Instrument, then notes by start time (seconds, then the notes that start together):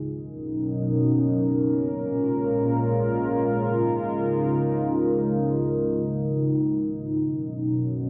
analog synth pad
0.11 B2 F#3 C#4 D#4 A#4
1.89 A#2 G#3 F4
3.67 C#3 D#4
7.22 B2 F#3 C#4